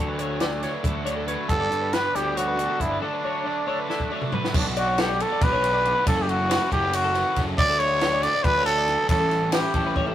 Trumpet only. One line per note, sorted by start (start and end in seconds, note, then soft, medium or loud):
1.49 1.95 A4 loud
1.94 2.17 B4 medium
2.15 2.38 G4 medium
2.37 2.82 F#4 loud
2.81 3.01 E4 medium
3.02 4.29 D4 medium
4.56 4.66 D4 medium
4.78 5.02 F#4 medium
5.00 5.23 G4 medium
5.22 5.44 A4 loud
5.43 6.06 B4 loud
6.07 6.23 A4 loud
6.22 6.31 G4 medium
6.29 6.71 F#4 loud
6.72 6.96 G4 loud
6.95 7.43 F#4 loud
7.58 7.81 D5 loud
7.79 8.24 C#5 loud
8.23 8.45 D5 loud
8.44 8.65 B4 loud
8.66 9.06 A4 loud
9.09 9.54 A4 loud
9.53 10.15 G4 medium